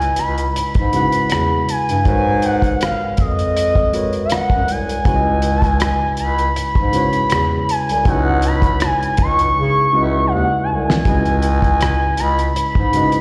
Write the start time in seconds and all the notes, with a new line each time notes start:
Already playing: C#2 C#3 G#3 E4 F#4 B4 D#5 G#5
0.02 closed hi-hat
0.16 C#2 B5, cross-stick, closed hi-hat
0.38 closed hi-hat
0.56 G#2 B5, closed hi-hat
0.75 G#2, kick, closed hi-hat
0.93 C#3 G#3 E4 F#4 B4 F#5, closed hi-hat
1.12 closed hi-hat
1.30 E2, cross-stick, closed hi-hat
1.69 G#5, closed hi-hat
1.89 G2, closed hi-hat
2.05 G#2 G#3 F#4 A#4 B4 C#5 G#5, kick, closed hi-hat
2.42 F#5, closed hi-hat
2.62 kick, closed hi-hat
2.81 F5, cross-stick, closed hi-hat
3.17 F2 D#5, kick, closed hi-hat
3.39 closed hi-hat
3.57 closed hi-hat
3.75 kick
3.93 G#3 F#4 A#4 B4 C#5, closed hi-hat
4.13 closed hi-hat
4.25 F5
4.30 F#5, cross-stick, closed hi-hat
4.50 F#2, kick
4.68 C2 G#5, closed hi-hat
4.89 closed hi-hat
5.05 C#2 C#3 G#3 E4 F#4 B4 C#5, kick, closed hi-hat
5.16 D#5
5.42 closed hi-hat
5.57 A5
5.62 G#5, kick, cross-stick, closed hi-hat
5.80 cross-stick, closed hi-hat
6.17 C#2 B5, closed hi-hat
6.38 closed hi-hat
6.56 G#2 B5, closed hi-hat
6.75 G#2, kick
6.93 C#3 G#3 E4 F#4 B4 C#5, closed hi-hat
7.13 closed hi-hat
7.30 E2, cross-stick, closed hi-hat
7.69 G#5, closed hi-hat
7.89 C2, closed hi-hat
8.05 C#2 C#3 G#3 D#4 F#4 B4 C#5 F#5, kick, closed hi-hat
8.13 E4
8.42 B5, closed hi-hat
8.62 kick, closed hi-hat
8.80 G#5, cross-stick, closed hi-hat
9.03 closed hi-hat
9.17 C#2, kick, closed hi-hat
9.21 C#6
9.39 closed hi-hat
9.57 C#3
9.93 C#2 C#3 G#3 E4 F#4 B4 D#5
10.03 E5
10.26 F5
10.32 D#2 F#5
10.63 A5
10.69 C2 G#5
10.90 snare
11.05 C#2 C#3 G#3 E4 F#4 B4, kick, closed hi-hat
11.10 D#5
11.25 closed hi-hat
11.42 closed hi-hat
11.62 G#5, kick, closed hi-hat
11.81 cross-stick, closed hi-hat
12.17 C#2 B5, cross-stick, closed hi-hat
12.39 closed hi-hat
12.56 G#2 B5, closed hi-hat
12.75 G#2, kick
12.93 C#3 G#3 D#4 F#4 B4 D#5, closed hi-hat
13.01 E4
13.12 closed hi-hat